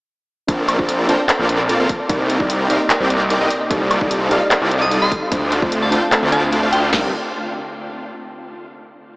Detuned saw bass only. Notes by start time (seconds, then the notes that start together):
0.48 A#1
0.79 A#1
1.09 A#1
1.39 A#1
1.80 A#1
2.10 C2
2.40 C2
2.70 C2
3.00 C2
3.41 C2
3.71 C2
4.01 C2
4.31 C2
4.62 C2
5.02 C2
5.32 D2
5.62 D2
5.92 D2
6.23 D2
6.63 D2
6.93 C2